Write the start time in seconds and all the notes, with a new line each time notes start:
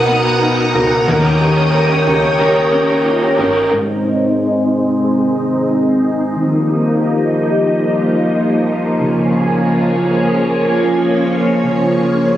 Already playing: C#2 B2 B3 D#4 F#4 A#4 F#5 A#5 D#6
0.09 B3
0.41 D#4
0.75 C#2 A#4
1.06 D#2 D#3 A#3 A#4 C#5 G5 D#6
1.10 C#4 G4 A#4
1.41 G4
1.75 A#4
2.07 C#2 G4
2.39 D#3 A#3 C#4 G4 A#4
2.73 C#4
3.06 F4
3.23 G4
3.38 G1 G4 A#4
3.43 C#4
3.72 G#2 G#3 C4 D#4 C5 D#5
4.05 D#4
4.38 G#4
4.71 D#4
5.04 G#4
5.37 C4
5.70 D#4
6.03 G#4
6.35 D#3 F3 A#3 G4 D#5
6.69 D#4
7.01 G4
7.34 D#4
7.67 G4
8.00 A#3
8.33 D#4
8.66 G4
8.99 C#2 C#3 C#4 G#4 C#5
9.32 F4
9.65 G#4
9.98 F4
10.31 G#4
10.64 A#3
10.97 F4
11.30 G#4
11.63 C#3 G#4
11.96 F4
12.29 G#4